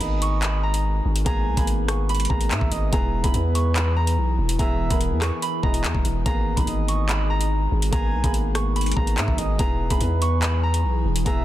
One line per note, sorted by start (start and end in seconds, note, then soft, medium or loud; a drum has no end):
0.00 1.01 G#1 loud
0.00 2.89 G#3 medium
0.00 1.25 A#3 loud
0.00 1.25 B3 loud
0.00 0.54 D#4 loud
0.00 2.89 D#4 medium
0.00 1.26 G#4 loud
0.00 2.89 G#4 medium
0.00 0.80 D#5 medium
0.00 0.42 B5 medium
0.00 closed hi-hat medium
0.22 1.48 C#6 medium
0.22 closed hi-hat medium
0.42 0.69 B5 medium
0.42 clap loud
0.42 closed hi-hat medium
0.63 1.26 A#5 medium
0.74 closed hi-hat medium
1.05 1.25 G#1 loud
1.16 closed hi-hat medium
1.25 1.48 G#1 loud
1.25 1.49 A#3 loud
1.25 1.49 B3 loud
1.25 1.50 G#4 loud
1.25 1.65 G#5 loud
1.25 1.63 A#5 loud
1.25 kick loud
1.25 closed hi-hat medium
1.47 1.57 B1 loud
1.57 2.27 G#1 loud
1.57 1.81 A#3 loud
1.57 1.81 B3 medium
1.57 1.82 G#4 loud
1.57 2.09 B5 medium
1.57 kick medium
1.57 closed hi-hat medium
1.67 closed hi-hat medium
1.88 2.20 A#3 medium
1.88 2.20 B3 medium
1.88 2.20 G#4 medium
1.88 3.15 C#6 medium
1.88 cross-stick loud
1.88 closed hi-hat medium
2.09 2.36 B5 medium
2.09 closed hi-hat soft
2.15 closed hi-hat medium
2.20 closed hi-hat medium
2.25 closed hi-hat medium
2.29 2.52 G#1 loud
2.29 2.77 A#3 loud
2.29 2.77 B3 medium
2.29 2.78 G#4 loud
2.29 2.92 A#5 medium
2.29 kick loud
2.41 closed hi-hat medium
2.51 2.61 G#2 loud
2.51 2.71 E5 medium
2.51 clap loud
2.51 closed hi-hat medium
2.61 2.71 G#1 loud
2.61 kick medium
2.72 2.92 G#1 loud
2.72 2.92 D#5 medium
2.72 closed hi-hat medium
2.92 3.23 E1 loud
2.92 6.23 E3 medium
2.92 3.16 B3 loud
2.92 3.16 E4 loud
2.92 6.23 E4 medium
2.92 6.23 G#4 medium
2.92 3.17 G#4 loud
2.92 3.30 A#5 loud
2.92 kick loud
2.92 closed hi-hat medium
3.23 3.34 E1 loud
3.23 3.87 B3 medium
3.23 3.87 E4 medium
3.23 3.87 G#4 loud
3.23 3.75 B5 medium
3.23 kick medium
3.23 closed hi-hat medium
3.34 4.19 E2 loud
3.34 4.14 B4 medium
3.34 closed hi-hat medium
3.55 4.81 C#6 medium
3.55 closed hi-hat medium
3.76 4.02 B5 medium
3.76 clap loud
3.76 closed hi-hat medium
3.96 4.59 A#5 medium
4.07 closed hi-hat medium
4.18 4.37 B1 loud
4.38 4.58 E1 loud
4.49 closed hi-hat medium
4.58 4.89 E1 loud
4.58 4.83 B3 loud
4.58 4.83 E4 loud
4.58 4.83 G#4 loud
4.58 4.98 E5 loud
4.58 4.97 A#5 medium
4.58 kick loud
4.58 closed hi-hat medium
4.90 5.13 E1 loud
4.90 5.14 B3 loud
4.90 5.14 E4 medium
4.90 5.15 A#4 loud
4.90 5.42 B5 medium
4.90 kick medium
4.90 closed hi-hat medium
5.01 closed hi-hat medium
5.11 5.31 E2 loud
5.20 5.53 B3 medium
5.20 5.53 E4 medium
5.20 5.53 B4 medium
5.20 6.48 C#6 medium
5.20 cross-stick loud
5.20 clap medium
5.20 closed hi-hat medium
5.42 5.69 B5 medium
5.42 closed hi-hat medium
5.63 5.86 E1 loud
5.63 6.10 B3 medium
5.63 6.11 E4 medium
5.63 6.11 G#4 loud
5.63 5.83 D#5 medium
5.63 6.25 A#5 loud
5.63 kick loud
5.74 closed hi-hat medium
5.84 5.94 E2 loud
5.84 clap loud
5.84 closed hi-hat medium
5.95 6.05 E1 loud
5.95 kick medium
6.05 6.25 E1 loud
6.05 closed hi-hat medium
6.26 6.56 G#1 loud
6.26 9.56 G#3 medium
6.26 6.49 A#3 loud
6.26 6.50 B3 loud
6.26 9.56 D#4 medium
6.26 9.56 G#4 medium
6.26 6.50 G#4 loud
6.26 6.63 A#5 loud
6.26 kick loud
6.26 closed hi-hat medium
6.56 6.67 G#1 loud
6.56 7.20 A#3 loud
6.56 7.20 B3 medium
6.56 7.21 D#4 loud
6.56 7.09 B5 medium
6.56 kick medium
6.56 closed hi-hat medium
6.67 7.68 G#1 loud
6.67 7.47 D#5 medium
6.67 closed hi-hat medium
6.88 8.15 C#6 medium
6.88 closed hi-hat medium
7.09 7.36 B5 medium
7.09 clap loud
7.09 closed hi-hat medium
7.30 7.92 A#5 medium
7.41 closed hi-hat medium
7.72 7.92 G#1 loud
7.82 closed hi-hat medium
7.91 8.15 G#1 loud
7.91 8.16 A#3 loud
7.91 8.16 B3 loud
7.91 8.16 G#4 loud
7.91 8.32 G#5 loud
7.91 8.30 A#5 loud
7.91 kick loud
7.91 closed hi-hat medium
8.13 8.23 B1 loud
8.24 8.94 G#1 loud
8.24 8.48 A#3 loud
8.24 8.48 B3 medium
8.24 8.48 G#4 loud
8.24 8.76 B5 medium
8.24 kick medium
8.24 closed hi-hat medium
8.34 closed hi-hat medium
8.54 8.86 A#3 medium
8.54 8.87 B3 medium
8.54 8.87 G#4 loud
8.54 9.81 C#6 medium
8.54 cross-stick loud
8.54 closed hi-hat medium
8.76 9.02 B5 medium
8.76 closed hi-hat soft
8.81 closed hi-hat medium
8.86 closed hi-hat medium
8.92 closed hi-hat medium
8.96 9.19 G#1 loud
8.96 9.44 A#3 loud
8.96 9.44 B3 medium
8.96 9.44 G#4 loud
8.96 9.59 A#5 medium
8.96 kick loud
9.07 closed hi-hat medium
9.18 9.27 G#2 loud
9.18 9.37 E5 medium
9.18 clap loud
9.18 closed hi-hat medium
9.28 9.38 G#1 loud
9.28 kick medium
9.38 9.58 G#1 loud
9.38 9.58 D#5 medium
9.38 closed hi-hat medium
9.58 9.89 E1 loud
9.58 11.45 E3 medium
9.58 9.82 B3 loud
9.58 9.83 E4 loud
9.58 11.45 E4 medium
9.58 11.45 G#4 medium
9.58 9.83 G#4 loud
9.58 11.45 B4 medium
9.58 9.97 A#5 loud
9.58 kick loud
9.58 closed hi-hat medium
9.89 10.00 E1 loud
9.89 10.53 B3 medium
9.89 10.54 E4 medium
9.89 10.54 G#4 loud
9.89 10.42 B5 medium
9.89 kick medium
9.89 closed hi-hat medium
10.01 10.86 E2 loud
10.01 10.80 B4 medium
10.01 closed hi-hat medium
10.22 11.45 C#6 medium
10.22 closed hi-hat medium
10.42 10.69 B5 medium
10.42 clap loud
10.42 closed hi-hat medium
10.63 11.26 A#5 medium
10.74 closed hi-hat medium
10.84 11.04 B1 loud
11.05 11.25 E1 loud
11.16 closed hi-hat medium
11.25 11.45 E1 loud
11.25 11.45 B3 loud
11.25 11.45 E4 loud
11.25 11.45 G#4 loud
11.25 11.45 E5 loud
11.25 11.45 A#5 loud
11.25 kick loud
11.25 closed hi-hat medium